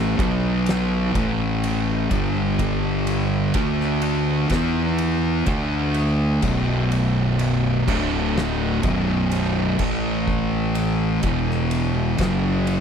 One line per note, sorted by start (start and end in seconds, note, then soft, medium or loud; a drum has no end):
0.00 0.15 A1 medium
0.00 0.17 A2 loud
0.00 0.17 E3 loud
0.00 0.17 A3 loud
0.17 1.11 B1 loud
0.17 1.12 B2 medium
0.17 1.13 F#3 loud
0.17 1.13 B3 loud
0.17 kick loud
0.17 ride medium
0.66 snare loud
0.66 ride loud
1.13 2.07 A1 medium
1.13 2.08 A2 medium
1.13 2.09 E3 medium
1.13 2.09 A3 loud
1.13 kick loud
1.13 ride medium
1.64 ride loud
2.11 3.51 G1 loud
2.11 3.53 G2 medium
2.11 3.52 D3 loud
2.11 3.53 G3 loud
2.11 kick loud
2.11 ride medium
2.59 kick loud
2.59 ride loud
3.07 ride medium
3.54 4.46 D2 loud
3.54 4.48 D3 medium
3.54 4.49 A3 medium
3.54 4.49 D4 loud
3.54 kick loud
3.54 ride loud
3.81 snare soft
4.02 ride medium
4.50 5.42 E2 medium
4.50 5.45 E3 loud
4.50 5.45 B3 loud
4.50 5.45 E4 loud
4.50 kick loud
4.50 snare loud
4.50 ride loud
4.98 ride medium
5.46 6.38 D2 loud
5.46 6.41 D3 loud
5.46 6.41 A3 loud
5.46 6.41 D4 loud
5.46 kick loud
5.46 ride loud
5.94 ride medium
6.42 7.83 B0 medium
6.42 7.85 B1 loud
6.42 7.85 F#2 loud
6.42 7.86 B2 loud
6.42 kick loud
6.42 crash loud
6.92 ride medium
7.39 ride medium
7.87 8.79 D1 medium
7.87 8.81 D2 medium
7.87 8.81 A2 medium
7.87 8.82 D3 loud
7.87 kick loud
7.87 crash loud
8.38 snare loud
8.83 9.75 B0 medium
8.83 9.77 B1 loud
8.83 9.78 F#2 medium
8.83 9.78 B2 medium
8.83 kick loud
8.83 ride medium
9.31 ride loud
9.79 11.19 A1 loud
9.79 11.21 A2 medium
9.79 11.22 E3 loud
9.79 11.22 A3 loud
9.79 kick loud
9.79 crash loud
10.28 kick loud
10.75 ride medium
11.22 12.15 E1 medium
11.22 12.17 E2 medium
11.22 12.17 B2 loud
11.22 12.17 E3 loud
11.22 kick loud
11.22 ride loud
11.51 snare soft
11.71 ride medium
12.18 12.80 F#1 medium
12.18 12.80 F#2 loud
12.18 12.80 C#3 loud
12.18 12.80 F#3 loud
12.18 kick loud
12.18 snare loud
12.18 ride loud
12.67 ride medium